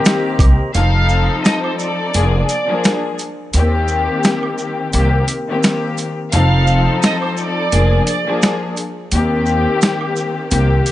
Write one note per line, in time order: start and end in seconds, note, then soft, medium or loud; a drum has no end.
0.00 0.53 D#3 loud
0.00 0.54 A#3 loud
0.00 0.54 C4 medium
0.00 0.54 G4 loud
0.00 0.72 G4 medium
0.00 0.72 C5 medium
0.00 0.72 D#5 medium
0.00 0.72 A#5 medium
0.05 snare loud
0.05 closed hi-hat medium
0.05 maracas medium
0.39 0.54 C2 medium
0.39 kick loud
0.39 closed hi-hat medium
0.39 high woodblock medium
0.39 maracas soft
0.39 shaker medium
0.74 1.27 F1 loud
0.74 2.12 F3 loud
0.74 2.14 C4 medium
0.74 2.14 D#4 medium
0.74 2.14 A4 loud
0.74 1.40 F5 loud
0.74 closed hi-hat medium
0.74 maracas medium
1.09 shaker soft
1.09 maracas soft
1.44 1.62 D#5 medium
1.44 snare loud
1.44 closed hi-hat medium
1.44 maracas medium
1.63 1.77 C5 medium
1.63 high woodblock medium
1.78 2.44 D5 medium
1.78 maracas medium
1.78 shaker medium
2.13 2.41 F1 loud
2.13 2.46 F3 loud
2.13 2.46 A#3 medium
2.13 2.46 D4 medium
2.13 2.47 G#4 loud
2.13 closed hi-hat medium
2.13 maracas medium
2.49 2.80 D5 medium
2.49 closed hi-hat medium
2.49 shaker medium
2.49 maracas medium
2.67 3.14 F3 loud
2.67 3.15 A#3 medium
2.67 3.15 D4 medium
2.67 3.15 G#4 loud
2.84 snare loud
2.84 snare medium
2.84 closed hi-hat medium
2.84 maracas medium
3.19 closed hi-hat medium
3.19 maracas medium
3.19 shaker medium
3.54 4.06 D#2 loud
3.54 4.91 D#3 loud
3.54 4.91 A#3 medium
3.54 4.92 C4 medium
3.54 4.92 G4 loud
3.54 closed hi-hat medium
3.54 maracas medium
3.88 maracas soft
3.88 shaker soft
4.24 snare loud
4.24 snare medium
4.24 closed hi-hat medium
4.24 maracas medium
4.43 high woodblock medium
4.58 maracas medium
4.58 shaker medium
4.92 5.20 C2 loud
4.92 5.25 D#3 medium
4.92 5.25 A#3 loud
4.92 5.25 C4 medium
4.92 5.26 G4 loud
4.92 closed hi-hat medium
4.92 maracas medium
5.28 closed hi-hat medium
5.28 shaker medium
5.28 maracas medium
5.48 6.11 D#3 medium
5.48 6.12 A#3 medium
5.48 6.12 C4 medium
5.48 6.12 G4 loud
5.63 snare loud
5.63 closed hi-hat medium
5.63 maracas medium
5.98 closed hi-hat medium
5.98 maracas soft
5.98 shaker medium
6.30 6.86 F1 loud
6.30 7.70 F3 loud
6.30 7.72 C4 medium
6.30 7.72 D#4 loud
6.30 7.73 A4 loud
6.30 6.97 F5 loud
6.30 closed hi-hat medium
6.30 maracas medium
6.67 shaker soft
6.67 maracas soft
7.01 7.19 D#5 medium
7.01 snare loud
7.01 snare medium
7.01 closed hi-hat medium
7.01 maracas medium
7.21 7.35 C5 medium
7.21 high woodblock medium
7.37 8.03 D5 loud
7.37 maracas medium
7.37 shaker medium
7.71 7.99 F1 loud
7.71 8.04 F3 loud
7.71 8.04 A#3 medium
7.71 8.04 D4 medium
7.71 8.05 G#4 loud
7.71 closed hi-hat medium
7.71 maracas medium
8.07 8.39 D5 medium
8.07 closed hi-hat medium
8.07 shaker medium
8.07 maracas medium
8.25 8.72 F3 loud
8.25 8.73 A#3 medium
8.25 8.73 D4 medium
8.25 8.73 G#4 loud
8.42 snare loud
8.42 closed hi-hat medium
8.42 maracas medium
8.77 closed hi-hat medium
8.77 maracas soft
8.77 shaker medium
9.12 9.64 D#2 loud
9.12 10.49 D#3 loud
9.12 10.49 A#3 medium
9.12 10.50 C4 medium
9.12 10.50 G4 loud
9.12 closed hi-hat medium
9.12 maracas medium
9.46 shaker soft
9.46 maracas soft
9.82 snare loud
9.82 snare medium
9.82 closed hi-hat medium
9.82 maracas medium
10.01 high woodblock medium
10.16 maracas medium
10.16 shaker medium
10.50 10.78 C2 loud
10.50 10.83 D#3 medium
10.50 10.83 A#3 medium
10.50 10.83 C4 medium
10.50 10.84 G4 loud
10.50 closed hi-hat medium
10.50 maracas medium
10.86 closed hi-hat medium
10.86 shaker medium
10.86 maracas medium